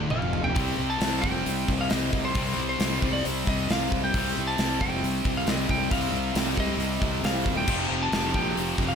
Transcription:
Already playing: D2
0.10 F1 F2 F5, mid tom
0.22 mid tom
0.33 floor tom
0.44 G5, floor tom
0.54 C2 C3 C4 G4 D#5, kick, open hi-hat
0.58 G3 C4
0.79 C2
0.90 A5
1.00 C2, snare, open hi-hat
1.21 F1 G3 C4 G5, kick
1.26 C3
1.46 C2, open hi-hat
1.68 C2, kick
1.81 F5
1.89 C2 D#5, snare, open hi-hat
2.13 C2, kick
2.25 C5
2.35 C2 C3 G3 C4, kick, open hi-hat
2.57 C2
2.69 C5
2.79 C2, snare, open hi-hat
3.02 C2 C3 G3 C4, kick
3.13 D5
3.25 C2 C5, open hi-hat
3.47 C2 D#5, kick
3.70 C2 F5, snare, open hi-hat
3.92 C2, kick
4.04 G5
4.13 C2 C3 G3 C4, kick, open hi-hat
4.37 C2
4.47 A5
4.58 C2, snare, open hi-hat
4.79 F1 C3 G3 C4 G5, kick
5.03 C2, open hi-hat
5.25 C2, kick
5.37 F5
5.47 C2 D#5, snare, open hi-hat
5.69 C2 G5, kick
5.90 C2 C3 G3 C4 F5, kick, open hi-hat
6.12 C2
6.35 C2, snare, open hi-hat
6.56 C2 C3 G3 C4, kick
6.60 D#5
6.77 C2, open hi-hat
7.02 C2, kick
7.23 C2 F5, snare, open hi-hat
7.46 D#1, kick
7.57 G5
7.67 F1 F2 C3 F3 C4, kick, crash
7.90 F1
8.03 A5
8.12 F1, snare, open hi-hat
8.32 A#1 F2 C3 F3 G5, kick
8.55 F1, open hi-hat
8.78 F1, kick
8.88 F5

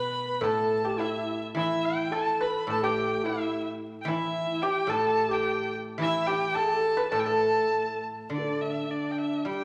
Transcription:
Already playing: B2 B4 B5
0.28 B4
0.34 B5
0.41 A2 A4 A5
0.85 G4
0.98 E4 E5
1.54 E3 E4 E5
1.85 G5
2.11 A4 A5
2.41 B4 B5
2.67 A2 A4 A5
2.82 G4 G5
3.24 E4 E5
4.02 E3 G5
4.08 E4 E5
4.49 E4
4.62 G4 G5
4.87 A2 A4 A5
5.29 G4
5.33 G5
5.98 E3 E4 E5
6.26 G4 G5
6.54 A4 A5
6.97 B4
7.11 A2 A4 A5
7.20 G5
7.25 A4 A5
8.30 D3 D4
8.34 D5
8.39 B4
8.44 D4
8.62 E5
8.88 D4 D5
9.12 G5
9.18 E5
9.45 G3 G4 G5

